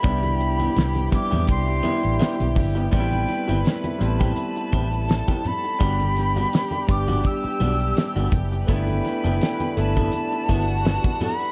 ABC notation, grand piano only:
X:1
M:4/4
L:1/8
Q:"Swing 16ths" 1/4=83
K:Ador
V:1 name="Grand piano"
[G,B,DE]3 [G,B,DE]2 [G,B,DE]3 | [G,B,CDE]3 [G,B,CE]4 z | [G,B,DG]3 [G,B,DG]2 [G,B,DG]3 | [A,B,DE]3 [A,B,DE]4 z |]